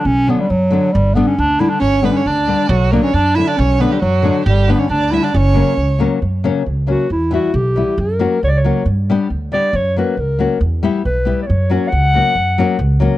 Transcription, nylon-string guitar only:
\new Staff \with { instrumentName = "Nylon-string guitar" } { \time 2/4 \tempo 4 = 136 r8 <d fis b d'>8 r8 <d fis b d'>8 | r8 <d g b d'>8 r8 <d g b d'>8 | r8 <d g b d'>8 r8 <d g b d'>8 | r8 <d fis b d'>8 r8 <d fis b d'>8 |
r8 <d fis b d'>8 r8 <d fis b d'>8 | r8 <d g b d'>8 r8 <d g b d'>8 | r8 <cis fis ais cis'>8 r8 <cis fis ais cis'>8 | r8 <cis fis ais cis'>8 r8 <cis fis ais cis'>8 |
r8 <e g b e'>8 r8 <e g b e'>8 | r8 <fis ais cis' fis'>8 r8 <fis ais cis' fis'>8 | r8 <g b d' g'>8 r8 <g b d' g'>8 | r8 <fis ais cis' fis'>8 r8 <fis ais cis' fis'>8 |
r8 <g b e' g'>8 r8 <g b e' g'>8 | r8 <fis ais cis' fis'>8 r8 <fis ais cis' fis'>8 | r8 <fis ais cis' fis'>8 r8 <fis ais cis' fis'>8 | }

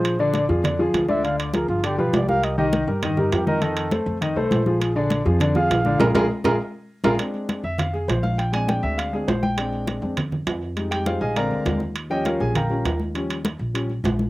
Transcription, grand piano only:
<<
  \new Staff \with { instrumentName = "Grand piano" } { \time 4/4 \key bes \mixolydian \tempo 4 = 202 <f f' aes'>8 <d d' d''>4 <f f' aes'>8 <d d' d''>8 <f f' aes'>4 <d d' d''>8 | <d d' d''>4 <f f' aes'>4 <d d' d''>8 <f f' g'>4 <g g' bes'>8~ | <g g' bes'>8 <ees ees' ees''>4 <g g' bes'>8 <ees ees' ees''>8 <g g' bes'>4 <ees ees' ees''>8 | <ees ees' ees''>4 <a a' c''>4 <ees ees' ees''>8 <a a' c''>4 <f f' aes'>8~ |
<f f' aes'>8 <d d' d''>4 <f f' aes'>8 <d d' d''>8 <f f' aes'>4 <d d' d''>8 | <f' aes' bes'>8 <f' aes' bes'>8 r8 <f' aes' bes'>8 r4. <f' aes' bes'>8 | r4. e''8 f''8 aes'8 c''8 f''8 | g''8 aes''8 g''8 e''8 f''8 aes'8 c''8 g''8~ |
g''4 r2. | r8 <g' g''>8 <f' aes' c'' f''>8 <aes' ees'' f'' aes''>8 <bes' d'' f'' bes''>4. r8 | r8 <g' des'' ees'' g''>8 <f' bes' des'' f''>8 <aes' aes''>8 <bes' f'' g'' bes''>4. r8 | r1 | }
  \new Staff \with { instrumentName = "Grand piano" } { \clef bass \time 4/4 \key bes \mixolydian r1 | r1 | r1 | r1 |
r1 | r1 | <aes c' d'>4. r2 r8 | r8 <aes c' d'>2 <aes c' d'>8 r4 |
<aes c' d'>4. <aes c' d'>8 r2 | <g aes ees'>2 <d aes c'>4. r8 | r8 <f g des'>4. r8 <f g des'>8 r4 | <f g des'>8 r4. <f g des'>8 r4. | }
>>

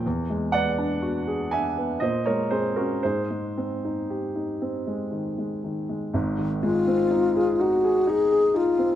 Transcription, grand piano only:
\new Staff \with { instrumentName = "Grand piano" } { \time 3/4 \key aes \mixolydian \tempo 4 = 61 << { r8 <d'' fis''>4 <e'' gis''>8 <c'' ees''>16 <bes' des''>16 <aes' c''>16 <ges' bes'>16 | <aes' c''>2 r4 | r2. | } \\ { e,16 gis16 b16 d'16 fis'16 gis'16 d'16 b16 bes,16 aes16 c'16 des'16 | aes,16 aes16 c'16 ees'16 g'16 ees'16 c'16 aes16 ees16 aes16 ees16 aes16 | <aes,, aes,>16 ees16 aes16 c'16 ees'16 aes'16 ees'16 aes'16 ees'16 aes'16 ees'16 c'16 | } >> }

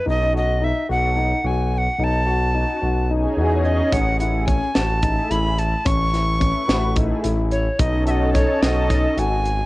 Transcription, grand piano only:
\new Staff \with { instrumentName = "Grand piano" } { \time 7/8 \key b \mixolydian \tempo 4 = 109 dis'8 fis'8 dis'8 fis'8 dis'8 fis'4 | dis'8 fis'8 dis'8 fis'8 dis'8 fis'4 | cis'8 e'8 cis'8 fis'8 dis'8 e'4 | cis'8 e'8 cis'8 fis'8 dis'8 e'4 |
dis'8 fis'8 dis'8 fis'8 dis'8 fis'4 | }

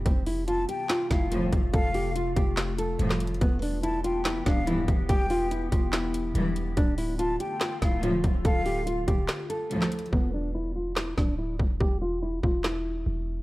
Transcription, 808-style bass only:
\new Staff \with { instrumentName = "808-style bass" } { \clef bass \time 4/4 \key d \dorian \tempo 4 = 143 f,,4. r4 f,,4 f,,8 | f,,4. f,,4. f,,4 | e,,2~ e,,8 d,,4 e,,8 | e,,4. e,,4. e,,4 |
d,,4. r4 d,,4 d,,8 | d,,4. d,,8 r2 | e,,2~ e,,8 d,,4 e,,8 | e,,4. e,,4. e,,4 | }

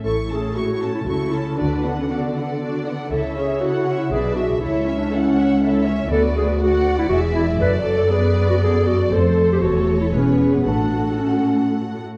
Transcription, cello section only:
\new Staff \with { instrumentName = "Cello section" } { \clef bass \time 3/4 \key a \major \tempo 4 = 119 a,2 cis4 | d2. | cis2 b,4 | cis,2. |
d,2 e,4 | fis,2. | f,4 e,4 e,4 | a,2~ a,8 r8 | }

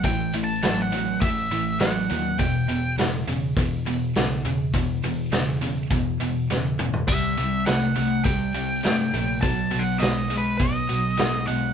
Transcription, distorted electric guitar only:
\new Staff \with { instrumentName = "Distorted electric guitar" } { \clef bass \time 4/4 \key e \minor \tempo 4 = 102 <a, e>8 <a, e>8 <a, fis>8 <a, fis>8 <a, e>8 <a, e>8 <a, fis>8 <a, fis>8 | <e, b,>8 <e, b,>8 <e, cis>8 <e, cis>8 <e, b,>8 <e, b,>8 <e, cis>8 <e, cis>8 | <e, b,>8 <e, b,>8 <e, cis>8 <e, cis>8 <e, b,>8 <e, b,>8 <e, cis>8 <e, cis>8 | <c g>8 <c g>8 <c a>8 <c a>8 <c g>8 <c g>8 <c a>8 <c a>8 |
<b, fis>8 <b, fis>8 <b, gis>8 <b, gis>8 <b, fis>8 <b, fis>8 <b, gis>8 <b, gis>8 | }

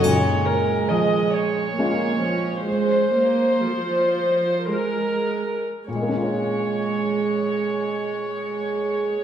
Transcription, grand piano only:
\new Staff \with { instrumentName = "Grand piano" } { \time 3/4 \key bes \minor \tempo 4 = 56 bes,4 f4 <aes des' f'>4~ | <aes des' f'>2. | <bes, aes bes des' f' des''>2. | }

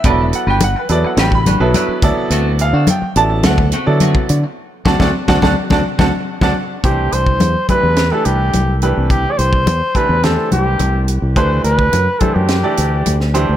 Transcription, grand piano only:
\new Staff \with { instrumentName = "Grand piano" } { \time 4/4 \key c \lydian \tempo 4 = 106 << { r16 e''16 fis''16 g''16 fis''16 b'16 d''16 fis''16 g''16 b''16 r4. | r8 f''8 g''8 a''8 fis''4. r8 | r8 <c' d' fis' d'' fis'' a''>16 <c' d' fis' d'' fis'' a''>16 r16 <c' d' fis' d'' fis'' a''>16 <c' d' fis' d'' fis'' a''>16 r16 <c' d' fis' d'' fis'' a''>16 r16 <c' d' fis' d'' fis'' a''>16 r8 <c' d' fis' d'' fis'' a''>16 r8 | r1 |
r1 | r1 | } \\ { <fis b e' a' d''>4 r8 <fis b e' a' b'>8. r8 <fis b e' a' b'>8. <fis b e' a' d''>8~ | <fis b e' a' d''>4 r8 <fis b e' a' d''>8. r8 <fis b e' a' d''>8. r8 | r1 | <e a d' g' c''>4 r8 <e a d' g' b'>8 r16 <e a d' g' b'>8. r8 <e a d' g' b'>8~ |
<e a d' g' b'>4 r8 <e a d' g' c''>16 r16 <e a d' g' c''>4. r8 | <e a d' g' b'>4 r8 <e a d' g' c''>8 r16 <e a d' g' d''>8. r8 <e a d' g' c''>8 | } >> }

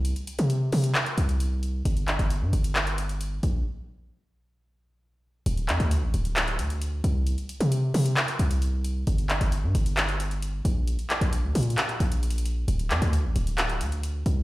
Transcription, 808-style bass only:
\new Staff \with { instrumentName = "808-style bass" } { \clef bass \time 4/4 \key g \dorian \tempo 4 = 133 c,16 r8 c8. c8 r8 c,4. | g,,8. g,,8 g,16 g,,2 bes,,8 | r1 | d,,8 f,16 d,8 a,,16 d,,4 d,4 c,8~ |
c,16 r8 c8. c8 r8 c,4. | g,,8. g,,8 g,16 g,,2 bes,,8~ | bes,,16 r8 bes,,8 d,16 bes,8 r8 bes,,4. | d,,8 f,16 d,8 a,,16 d,,4 d,4 c,8 | }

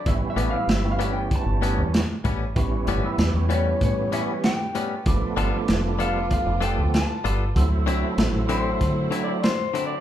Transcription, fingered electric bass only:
\new Staff \with { instrumentName = "Fingered electric bass" } { \clef bass \time 4/4 \key a \dorian \tempo 4 = 96 a,,16 r16 a,,16 r16 g,,4~ g,,16 g,,8 e,8 r16 a,,8 | a,,8 g,,16 r16 e,16 e,8. a,8 r4. | g,,16 r16 g,,16 r16 f,,4~ f,,16 f,,8 d,8 r16 g,,8 | d,8 c,16 r16 a,,16 a,,8. d8 r4. | }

